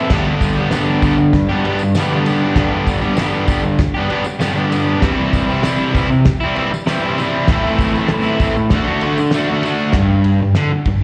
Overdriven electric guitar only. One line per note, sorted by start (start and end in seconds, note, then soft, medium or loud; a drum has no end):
0.00 0.11 A4 medium
0.10 0.71 G2 medium
0.10 0.71 D3 loud
0.10 0.60 G3 loud
0.10 0.59 B3 loud
0.14 0.58 D4 loud
0.14 0.55 G4 loud
0.55 0.75 D4 medium
0.55 0.75 G4 medium
0.60 0.72 G3 medium
0.60 0.73 B3 medium
0.71 1.95 G2 medium
0.71 1.34 D3 loud
0.71 1.02 G3 medium
0.71 1.03 B3 loud
0.71 1.05 D4 loud
0.75 1.06 G4 medium
1.02 1.19 G3 medium
1.02 1.18 B3 medium
1.02 1.18 D4 medium
1.02 1.18 G4 medium
1.18 muted overdriven electric guitar stroke medium
1.49 1.64 B3 medium
1.49 1.66 D4 medium
1.49 1.68 G4 medium
1.54 1.64 G3 medium
1.65 1.83 G3 medium
1.65 1.82 B3 medium
1.65 1.82 D4 medium
1.69 1.82 G4 medium
1.83 muted overdriven electric guitar stroke soft
1.95 2.41 G2 loud
1.95 2.42 D3 loud
1.95 2.15 G3 loud
1.95 2.14 B3 loud
2.00 2.12 D4 loud
2.00 2.11 G4 loud
2.11 2.27 D4 medium
2.11 2.29 G4 medium
2.15 2.24 G3 medium
2.15 2.26 B3 medium
2.25 2.57 G3 medium
2.25 2.58 B3 medium
2.25 2.58 D4 medium
2.29 2.60 G4 medium
2.56 3.15 G2 loud
2.56 3.17 D3 loud
2.56 3.05 G3 loud
2.56 3.03 B3 loud
2.56 3.01 D4 loud
2.60 3.00 G4 loud
3.01 3.18 B3 medium
3.01 3.19 D4 medium
3.01 3.21 G4 medium
3.06 3.18 G3 medium
3.16 3.78 G2 medium
3.16 3.79 D3 loud
3.16 3.45 G3 loud
3.16 3.47 B3 loud
3.16 3.48 D4 loud
3.21 3.50 G4 loud
3.46 3.64 G3 medium
3.46 3.63 B3 medium
3.46 3.63 D4 medium
3.51 3.63 G4 medium
3.64 muted overdriven electric guitar stroke medium
3.94 4.09 B3 medium
3.94 4.11 D4 medium
3.94 4.12 G4 medium
3.99 4.07 G3 medium
4.08 4.26 G3 medium
4.08 4.26 B3 medium
4.08 4.25 D4 medium
4.13 4.25 G4 medium
4.26 muted overdriven electric guitar stroke medium
4.39 4.86 G2 loud
4.39 4.86 D3 loud
4.39 4.57 G3 medium
4.39 4.56 B3 loud
4.39 4.55 D4 loud
4.43 4.53 G4 loud
4.54 4.71 B3 medium
4.54 4.73 D4 medium
4.54 4.74 G4 medium
4.58 4.70 G3 medium
4.71 5.00 G3 medium
4.71 5.01 B3 medium
4.71 5.01 D4 medium
4.75 5.02 G4 medium
5.00 5.61 C3 loud
5.00 5.62 E3 loud
5.00 5.50 G3 loud
5.00 5.48 C4 loud
5.05 5.45 E4 loud
5.46 5.65 C4 medium
5.46 5.66 E4 medium
5.51 5.63 G3 medium
5.62 6.24 C3 loud
5.62 5.92 E3 medium
5.62 5.93 G3 loud
5.67 5.95 C4 loud
5.67 5.96 E4 loud
5.93 6.10 E3 medium
5.93 6.09 G3 medium
5.93 6.09 C4 medium
5.97 6.10 E4 loud
6.10 muted overdriven electric guitar stroke soft
6.40 6.57 C4 medium
6.40 6.58 E4 medium
6.46 6.56 G3 medium
6.55 6.72 E3 medium
6.55 6.72 G3 medium
6.55 6.71 C4 medium
6.55 6.71 E4 medium
6.72 muted overdriven electric guitar stroke soft
6.87 7.33 C3 medium
6.87 7.17 E3 loud
6.87 7.07 G3 medium
6.91 7.05 C4 loud
6.91 7.01 E4 loud
7.02 7.21 C4 medium
7.02 7.21 E4 medium
7.08 7.19 G3 medium
7.18 7.46 E3 medium
7.18 7.47 G3 medium
7.22 7.48 C4 medium
7.22 7.49 E4 medium
7.49 8.07 A2 loud
7.49 8.09 E3 loud
7.49 7.98 A3 loud
7.49 7.95 C4 loud
7.54 7.93 E4 loud
7.94 8.11 C4 medium
7.94 8.12 E4 medium
7.99 8.10 A3 medium
8.08 8.69 A2 loud
8.08 8.38 E3 medium
8.08 8.40 A3 loud
8.08 8.41 C4 loud
8.14 8.42 E4 loud
8.39 8.56 E3 medium
8.39 8.56 A3 medium
8.39 8.55 C4 medium
8.44 8.55 E4 medium
8.56 muted overdriven electric guitar stroke medium
8.71 9.01 D3 loud
8.71 8.91 A3 loud
8.71 8.88 D4 loud
8.76 8.86 F#4 loud
8.87 9.05 D4 medium
8.87 9.05 F#4 medium
8.92 9.02 A3 medium
9.02 9.32 D3 medium
9.02 9.18 A3 medium
9.02 9.19 D4 medium
9.02 9.17 F#4 medium
9.18 muted overdriven electric guitar stroke medium
9.33 9.62 D3 loud
9.33 9.51 A3 loud
9.33 9.49 D4 loud
9.38 9.46 F#4 loud
9.48 9.65 D4 medium
9.48 9.67 F#4 medium
9.52 9.64 A3 medium
9.64 9.92 D3 medium
9.64 9.93 A3 medium
9.64 9.94 D4 medium
9.68 9.95 F#4 medium
9.96 10.40 G2 loud
10.42 10.57 G2 medium
10.57 10.71 D3 loud
10.72 muted overdriven electric guitar stroke medium
10.87 11.02 G2 medium